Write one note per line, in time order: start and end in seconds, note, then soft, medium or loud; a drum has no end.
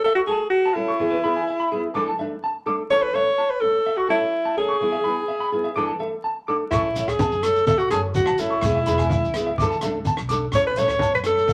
0.04 0.15 A4 loud
0.04 0.12 E5 medium
0.15 0.21 F#4 medium
0.15 0.23 C#6 medium
0.27 0.44 A3 soft
0.27 0.49 G#4 medium
0.27 0.42 A4 medium
0.27 0.36 A5 medium
0.50 0.75 F#4 loud
0.66 0.71 A5 medium
0.74 0.91 C#4 medium
0.74 2.18 E4 medium
0.74 0.91 A4 medium
0.79 0.92 A3 soft
0.88 0.95 C#6 medium
1.00 1.15 E3 medium
1.00 1.14 B3 medium
1.00 1.15 E4 medium
1.00 1.15 G#4 medium
1.11 1.18 B4 medium
1.24 1.40 B3 soft
1.24 1.39 E4 medium
1.24 1.39 G#4 medium
1.24 1.30 B5 medium
1.36 1.43 G#5 medium
1.48 1.54 E5 medium
1.60 1.66 B5 medium
1.72 1.88 B3 soft
1.72 1.87 E4 soft
1.72 1.86 G#4 medium
1.94 2.10 E3 medium
1.94 2.10 A3 medium
1.94 2.10 D4 medium
1.94 2.11 A4 loud
1.94 2.02 D6 medium
2.08 2.14 A5 medium
2.18 2.35 A3 soft
2.18 2.34 D4 medium
2.18 2.26 E5 medium
2.18 muted nylon-string guitar stroke medium
2.44 2.50 A5 medium
2.66 2.82 A3 soft
2.66 2.82 D4 medium
2.66 2.81 A4 medium
2.66 2.73 D6 medium
2.90 3.05 E3 medium
2.90 3.05 A3 medium
2.90 3.06 C#4 medium
2.90 3.06 A4 medium
2.90 3.04 C#5 loud
2.90 2.98 C#6 loud
3.03 3.16 B4 loud
3.13 3.30 A3 soft
3.13 3.29 C#4 medium
3.13 3.29 A4 medium
3.13 3.52 C#5 loud
3.13 3.22 E5 medium
3.38 3.45 A5 medium
3.50 3.62 B4 loud
3.61 3.78 A3 soft
3.61 3.77 C#4 soft
3.61 3.98 A4 loud
3.61 3.76 A4 soft
3.86 3.93 E5 medium
3.97 4.09 F#4 medium
3.97 4.04 C#6 medium
4.08 4.25 A3 soft
4.08 4.24 C#4 medium
4.08 4.54 E4 medium
4.08 4.24 A4 medium
4.08 4.16 A5 medium
4.45 4.52 A5 medium
4.57 4.73 A3 soft
4.57 4.72 C#4 soft
4.57 5.96 G#4 medium
4.57 4.72 A4 medium
4.69 4.75 C#6 medium
4.81 4.95 E3 medium
4.81 4.96 B3 medium
4.81 4.96 E4 medium
4.81 4.97 G#4 medium
4.92 4.99 E5 medium
5.04 5.21 B3 soft
5.04 5.20 E4 soft
5.04 5.19 G#4 medium
5.04 5.11 B5 medium
5.16 muted clean electric guitar stroke medium
5.28 5.35 E5 medium
5.40 5.47 B5 medium
5.52 5.68 B3 soft
5.52 5.67 E4 soft
5.52 5.67 G#4 medium
5.64 5.70 E5 medium
5.76 5.91 E3 medium
5.76 5.91 A3 medium
5.76 5.91 D4 medium
5.76 5.91 A4 loud
5.76 5.82 D6 medium
5.87 5.94 A5 medium
5.99 6.16 A3 soft
5.99 6.14 A4 medium
5.99 6.07 E5 medium
5.99 muted nylon-string guitar stroke soft
6.24 6.31 A5 medium
6.48 6.64 A3 soft
6.48 6.63 D4 medium
6.48 6.63 A4 medium
6.48 6.55 D6 medium
6.71 6.93 A1 medium
6.71 6.86 E3 medium
6.71 6.87 A3 medium
6.71 6.87 C#4 medium
6.71 7.10 E4 medium
6.71 6.87 A4 medium
6.71 6.79 C#6 medium
6.71 kick medium
6.71 cross-stick medium
6.71 muted conga soft
6.71 shekere medium
6.95 7.28 A1 loud
6.95 7.12 A3 soft
6.95 7.11 C#4 soft
6.95 7.03 E5 medium
6.95 closed hi-hat medium
6.95 muted conga soft
6.95 shekere medium
7.08 7.44 G#4 medium
7.08 kick medium
7.08 cross-stick medium
7.08 shekere soft
7.19 7.27 A5 medium
7.19 kick medium
7.19 high conga medium
7.19 shekere medium
7.32 7.67 F#1 medium
7.32 shekere soft
7.43 7.59 C#4 soft
7.43 7.67 A4 loud
7.43 muted nylon-string guitar stroke soft
7.43 cross-stick medium
7.43 closed hi-hat soft
7.43 shekere medium
7.47 7.60 A3 soft
7.56 shekere soft
7.67 7.88 A1 medium
7.67 7.80 A4 loud
7.67 7.75 E5 medium
7.67 kick medium
7.67 muted conga soft
7.67 high conga medium
7.67 shekere loud
7.78 7.90 F#4 medium
7.78 7.86 C#6 medium
7.78 shekere soft
7.90 8.24 F#1 loud
7.90 8.07 C#4 soft
7.90 8.01 G#4 medium
7.90 8.06 A4 soft
7.90 7.98 A5 medium
7.90 cross-stick medium
7.90 closed hi-hat soft
7.90 shekere medium
7.95 8.07 A3 soft
8.15 8.41 F#4 medium
8.15 kick medium
8.15 muted conga soft
8.15 high conga medium
8.15 shekere loud
8.26 8.59 A1 medium
8.26 8.33 A5 medium
8.26 cross-stick medium
8.38 8.55 A3 soft
8.38 8.54 C#4 soft
8.38 9.82 E4 medium
8.38 8.53 A4 soft
8.38 closed hi-hat medium
8.38 shekere medium
8.50 8.57 C#6 medium
8.61 8.84 E1 loud
8.61 8.77 E3 medium
8.61 8.78 B3 medium
8.61 8.78 E4 medium
8.61 kick medium
8.61 cross-stick medium
8.61 shekere loud
8.66 8.79 G#4 medium
8.75 8.81 E5 medium
8.86 9.19 E1 loud
8.86 9.02 E4 soft
8.86 9.02 G#4 medium
8.86 8.93 B5 medium
8.86 closed hi-hat medium
8.86 muted conga soft
8.86 shekere medium
8.90 9.03 B3 soft
8.98 9.05 G#5 medium
8.98 kick medium
8.98 cross-stick medium
8.98 shekere soft
9.10 9.17 E5 medium
9.10 kick medium
9.10 high conga medium
9.10 shekere medium
9.24 9.58 C#2 medium
9.24 shekere soft
9.34 9.49 G#4 soft
9.34 muted nylon-string guitar stroke medium
9.34 cross-stick medium
9.34 closed hi-hat medium
9.34 shekere medium
9.39 9.51 B3 soft
9.47 9.53 E5 medium
9.58 9.79 D2 medium
9.58 9.73 E3 medium
9.58 9.74 D4 medium
9.58 9.65 D6 medium
9.58 muted nylon-string guitar stroke medium
9.58 kick medium
9.58 muted conga soft
9.58 high conga medium
9.58 shekere loud
9.62 9.75 A4 loud
9.70 9.76 A5 medium
9.70 shekere soft
9.81 10.15 C#2 medium
9.81 9.97 A4 medium
9.81 9.89 E5 medium
9.81 cross-stick medium
9.81 closed hi-hat medium
9.81 shekere medium
9.85 9.99 A3 medium
9.85 9.98 D4 medium
10.05 10.13 A5 medium
10.05 kick medium
10.05 muted conga soft
10.05 high conga medium
10.05 shekere medium
10.17 10.50 B1 medium
10.17 cross-stick medium
10.29 10.45 A4 medium
10.29 10.36 D6 medium
10.29 closed hi-hat medium
10.29 low conga medium
10.29 shekere medium
10.33 10.46 A3 soft
10.33 10.46 D4 medium
10.52 10.74 A1 medium
10.52 10.69 E3 medium
10.52 10.69 A3 medium
10.52 10.66 C#5 loud
10.52 10.60 C#6 medium
10.52 kick medium
10.52 cross-stick medium
10.52 muted conga soft
10.52 shekere loud
10.56 10.69 C#4 medium
10.56 10.69 A4 medium
10.67 10.80 B4 loud
10.76 11.10 A1 loud
10.76 10.92 A4 medium
10.76 11.14 C#5 loud
10.76 10.84 E5 medium
10.76 closed hi-hat soft
10.76 muted conga soft
10.76 shekere medium
10.80 10.93 A3 soft
10.80 10.93 C#4 soft
10.88 kick medium
10.88 cross-stick medium
10.88 shekere soft
10.99 11.08 A5 medium
10.99 kick medium
10.99 high conga medium
10.99 shekere medium
11.14 11.48 F#1 medium
11.14 11.20 B4 medium
11.14 shekere soft
11.24 11.40 A4 soft
11.24 11.53 A4 loud
11.24 cross-stick medium
11.24 closed hi-hat medium
11.24 shekere medium
11.28 11.41 A3 soft
11.28 11.41 C#4 soft
11.38 shekere soft
11.48 11.53 A1 medium
11.48 muted clean electric guitar stroke medium
11.48 kick medium
11.48 muted conga soft
11.48 high conga medium
11.48 shekere medium